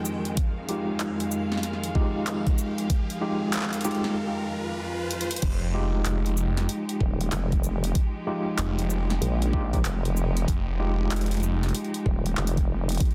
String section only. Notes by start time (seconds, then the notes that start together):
Already playing: F2 D#3 G#3 G5
0.37 F5
5.43 F3 G#3 D#4 G4